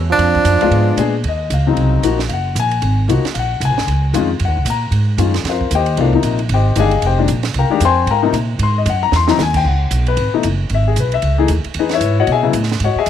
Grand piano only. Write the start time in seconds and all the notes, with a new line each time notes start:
0.61 G#3 B3 D4 F4
0.98 G#3 B3 D4 G#4
1.28 D#5
1.54 F5
1.67 C#3 F#3 C4 D#4
2.04 F3 A#3 D#4 F#4
2.29 F5
2.33 F#5
2.60 G#5
3.09 F3 A#3 D#4 F#4
3.34 F5
3.39 F#5
3.65 G#5
4.14 D#3 G#3 C#4 F4
4.45 F#5
4.70 A#5
5.18 D#3 G#3 C#4 F4
5.49 F4 A#4 C5 F5
5.75 G4 C5 D#5 G5
5.98 B2 E3 A3 D4 F4 A#4 C5 F5
6.14 C3 F3 A#3 D#4
6.54 G4 C5 D#5 G5
6.76 D#3 G#3 D4 G4 G#4 D#5 F5 G#5
7.06 G4 C5 D#5 G5
7.18 A#2 D#3 G#3 D4
7.59 A#4 F5 G5 A#5
7.70 D#3 G#3 D4 G4
7.85 C5 G5 G#5 C6
8.11 A#4 F5 G5 A#5
8.22 C3 F3 A#3 D#4
8.63 C6
8.78 D#5
8.90 F#5
9.03 A#5
9.16 C6
9.27 E3 F#3 C4 D#4 A#5
9.43 G#5
9.57 G5
9.68 F#5
10.08 B4
10.34 B2 E3 A3 D#4
10.75 E5
10.88 G#4
11.00 B4
11.14 E5
11.38 E3 A3 D#4 G#4
11.79 D#4 G#4 B4 D#5
11.94 E4 B4 C#5 E5
12.20 F#4 C#5 D#5 F#5
12.32 G#4 D#5 E5 G#5
12.43 C#3 F#3 B3 E4
12.84 F#4 C#5 D#5 F#5
12.99 G#4 D#5 E5 G#5